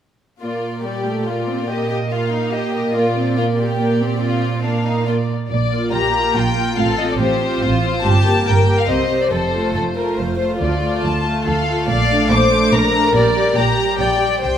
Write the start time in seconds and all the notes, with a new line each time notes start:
0.41 A#2 A#3 F4 D5
0.84 G3 G4 D5
1.05 A3
1.26 A#3 F4 D5
1.48 C4
1.69 A#3 G4 D#5
1.89 G4
2.11 F4 F5
2.32 D#4
2.53 G4 D#5
2.74 D#5
2.94 A#2 A#3 F4 D5
3.16 C4
3.37 A#3 F4
3.58 G4
3.79 A#3 D5
4.01 C4
4.21 F4
4.64 A#3 D4 F5
4.85 D#4
5.07 A#3 F4 D5
5.50 A#1 A#2 D5
5.71 A#3 F4
5.92 A#1 A#2 G4 A#5
6.14 A#3 F4
6.35 A#1 A#2 F4 G5
6.57 A#3 F4
6.77 A1 A2 C4 F4 A4 F5
6.99 C4 F4 D#5
7.10 D5
7.19 A1 A2 G4 C5
7.42 C4 F4
7.62 A1 A2 F4
7.84 C4 F4
8.04 G1 G2 G4 A5
8.26 A#3 G4
8.46 G1 G2 A#4 G5
8.67 A#3 G4
8.79 F5
8.88 C2 C3 C4 G4 C5 D#5
9.10 C4 G4
9.21 D5
9.31 F1 F2 A4 C5
9.54 A3 F4
9.74 F1 F2 A4
9.96 A3 F4 A#4
10.18 F1 F2 C5
10.38 A3 F4 C5
10.61 D2 A3 F4 D5
10.83 A3 F4
11.04 D2 A5
11.26 A3 F4
11.46 D2 A4 F5
11.68 A3 F4
11.88 A#1 A#2 D5 F5
12.10 A3 D4
12.31 A#1 A#2 C5 D6
12.51 A3 D4
12.73 A#1 A#2 A#4 A#5
12.94 A3 D4
13.14 A#1 A#2 G3 G4 D5
13.36 G3 G4
13.56 A#1 A#2 G4 A#5
13.78 G3 G4
13.99 A#1 A#2 D5 G5
14.20 G3 G4
14.43 C2 C3 C5 G5